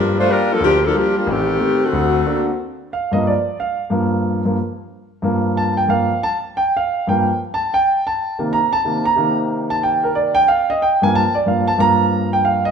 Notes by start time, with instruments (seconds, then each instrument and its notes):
Already playing: grand piano G2, saxophone section F3 A#3 D4 G4
0.19 saxophone section A3 D4 F4 C5
0.28 grand piano G3 A#3 F4, saxophone section G3 D4 F4 A#4
0.53 saxophone section F3 A#3 D4 A4
0.60 grand piano D2
0.64 saxophone section F3 A#3 D4 G4
0.86 saxophone section F3 A#3 D4 A4
0.94 saxophone section F3 A#3 D4 G4, grand piano G3 A#3 F4
1.17 saxophone section G3 A#3 D4 F4
1.27 grand piano A1
1.31 saxophone section D#3 A3 C4 G4
1.59 grand piano A3 C4 G4
1.84 saxophone section D3 A3 C4 F#4
1.93 grand piano D2
2.26 grand piano A#3 C4 D4 F#4
2.93 grand piano F5
3.12 grand piano G2 F3 A#3 D#5
3.27 grand piano D5
3.60 grand piano F5
3.90 grand piano G2 F3 A#3
4.45 grand piano G2 F3 A#3
5.22 grand piano G2 F3 A#3
5.57 grand piano A5
5.77 grand piano G5
5.88 grand piano G2 F3 A#3 F5
6.23 grand piano A5
6.57 grand piano G5
6.77 grand piano F5
7.07 grand piano G2 F3 A#3 G5
7.54 grand piano A5
7.74 grand piano G5
8.07 grand piano A5
8.39 grand piano C3 D#3 A#3
8.53 grand piano A#5
8.73 grand piano A5
8.85 grand piano C3 D#3 A#3
9.05 grand piano A#5
9.16 grand piano C3 D#3 A#3
9.70 grand piano A5
9.83 grand piano G5
10.04 grand piano A#4
10.15 grand piano D5
10.35 grand piano G5
10.48 grand piano F5
10.70 grand piano D#5
10.82 grand piano G5
11.02 grand piano G2 F3 A#3 G#5
11.15 grand piano A5
11.35 grand piano D5
11.46 grand piano G2 F3 A#3 F5
11.68 grand piano A5
11.78 grand piano G2 F3 A#3 A#5
12.33 grand piano G5
12.45 grand piano F5
12.65 grand piano D#5